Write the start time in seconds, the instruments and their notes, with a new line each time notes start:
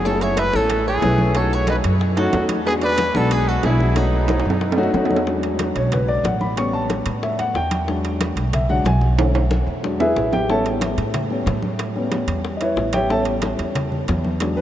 Already playing: upright bass F#1
0.05 upright piano A3 C#4 E4 G#4, trumpet A4, five-string banjo C#5, high bongo
0.13 upright piano A3 C#4 E4 G#4
0.21 trumpet C#5, five-string banjo E5, high bongo, high conga, high timbale
0.37 trumpet B4, five-string banjo E5, high bongo, high conga, high timbale, low timbale
0.53 upright bass A1, upright piano A3 C#4 E4 A4, trumpet A4, five-string banjo C#5, high bongo, high conga
0.70 high bongo, high conga, high timbale
0.86 trumpet G#4, five-string banjo C#5, high bongo, high conga
1.02 upright bass B1, upright piano A3 C#4 E4 B4, high bongo, low bongo, high conga, high timbale, low timbale
1.18 upright piano A3 C#4 E4 B4, high conga
1.35 upright piano A3 C#4 D#4 F#4, trumpet A4, five-string banjo C#5, high bongo, high timbale
1.51 trumpet C#5, five-string banjo E5, high bongo, high conga
1.67 trumpet B4, five-string banjo D#5, high bongo, high conga, high timbale, low timbale
1.83 upright bass F#2, high bongo, high conga, high timbale
2.00 high bongo, high conga
2.16 upright piano A3 C#4 D#4 F#4, trumpet F#4, five-string banjo A4, high bongo, high conga, high timbale
2.33 upright bass E2, upright piano A3 C#4 D#4 F#4, high bongo, low bongo, high conga, high timbale, low timbale
2.49 high conga, high timbale
2.66 upright piano G#3 B3 D4 F#4, trumpet G#4, five-string banjo B4, high bongo, high conga
2.73 upright piano G#3 B3 D4 F#4
2.82 trumpet B4, five-string banjo D5, high bongo, high conga, high timbale
2.98 high bongo, high conga, high timbale, low timbale
3.14 upright bass B1, upright piano G#3 B3 D4 F#4, trumpet A4, five-string banjo C#5, high bongo, high conga
3.31 trumpet G#4, five-string banjo B4, high bongo, high timbale
3.47 trumpet F#4, five-string banjo A4, high bongo, high conga
3.62 upright bass B1, upright piano G#3 B3 D4 E4, trumpet E4, five-string banjo G#4, high bongo, low bongo, high conga, high timbale, low timbale
3.78 upright piano G#3 B3 D4 F#4, high conga
3.95 upright piano A3 C#4 D#4 F#4, trumpet D#4, five-string banjo F#4, high bongo, high conga, high timbale
4.12 high bongo, high conga
4.28 high bongo, high conga, high timbale
4.40 high timbale
4.45 upright bass F#2, high bongo, high conga
4.50 low timbale
4.61 high bongo, high conga
4.72 low timbale
4.76 upright piano A3 C#4 D#4 F#4, high bongo, high conga
4.83 low timbale
4.93 upright bass E2, upright piano A3 C#4 D#4 F#4 F#5, high bongo, low bongo, high conga, low timbale
5.05 low timbale
5.10 upright piano C#5, high conga
5.16 low timbale
5.26 upright piano F#3 G#3 D4, high bongo, high conga
5.43 high conga, high timbale
5.59 high bongo, high conga, high timbale
5.75 upright bass B1, upright piano C#5, high conga, high timbale
5.92 upright piano B4, high bongo, high conga, low conga, high timbale
6.08 upright piano D5, high conga
6.23 upright bass A1, upright piano F#5, high bongo, low bongo, high conga, high timbale
6.41 upright piano B5, high conga
6.57 upright piano G3 B3 C#4 C#6, high bongo, high conga, high timbale
6.73 upright piano A5, high bongo, high conga
6.90 high bongo, high conga, high timbale
7.06 upright bass A2, high bongo, high conga, high timbale
7.23 upright piano E5, high bongo, high conga
7.39 upright piano F#5, high conga, high timbale
7.54 upright bass E2, upright piano G5, high bongo, low bongo, high conga
7.71 high bongo, high conga, high timbale
7.88 upright piano F#3 G#3 D4, high bongo, high conga
8.04 high conga, high timbale
8.21 high bongo, high conga, high timbale
8.36 upright bass B1, high conga, high timbale
8.53 upright piano E5, high bongo, high conga, low conga, high timbale
8.69 upright piano F#3 G#3 D4 F#5, high conga, low conga
8.84 upright bass B1, upright piano G#5, high bongo, low bongo, high conga, high timbale, low timbale
9.01 high conga
9.18 upright piano D3 A3 C#4, high bongo, high conga, high timbale
9.34 high bongo, high conga, high timbale
9.51 high bongo, high conga
9.67 upright bass E2, high bongo, high conga
9.83 upright piano F#3 G#3 D4, high bongo, high conga
10.00 upright piano E4 G#4 B4 E5, high conga, low timbale
10.16 upright bass A1, high bongo, low bongo, high conga
10.33 upright piano G4 G5, high bongo, high conga, low timbale
10.49 upright piano G3 B3 C#4 A4 C#5 E5 A5, high bongo, high conga
10.65 high conga, high timbale
10.81 high bongo, high conga, high timbale
10.97 upright bass A2, high conga, high timbale
11.14 high bongo, high conga, low conga, high timbale
11.30 upright piano G3 B3 C#4, high conga
11.46 upright bass A2, high bongo, low bongo, high conga, high timbale
11.62 high conga
11.79 high bongo, high conga, high timbale
11.96 upright piano G3 B3 C#4, high bongo, high conga
12.12 high bongo, high conga, high timbale
12.27 upright bass E2, high bongo, high conga, high timbale
12.44 high bongo, high conga
12.57 upright piano D#5, high conga, high timbale
12.61 upright piano E4 B4 C#5 E5
12.76 upright bass A1, high bongo, low bongo, high conga
12.93 upright piano G4 C#5 E5 G5, high bongo, high conga, high timbale
13.09 upright piano G3 B3 C#4 A4 C#5 E5 A5, high bongo, high conga
13.25 high conga, high timbale
13.42 high bongo, high conga, high timbale
13.59 upright bass E2, high conga, high timbale
13.75 high bongo, high conga, low conga, high timbale
13.92 high conga, low conga
14.08 upright bass E2, high bongo, low bongo, high conga, high timbale
14.24 high conga
14.40 upright piano F#3 G#3 D4, high bongo, high conga, high timbale
14.57 upright piano B4, high bongo, high conga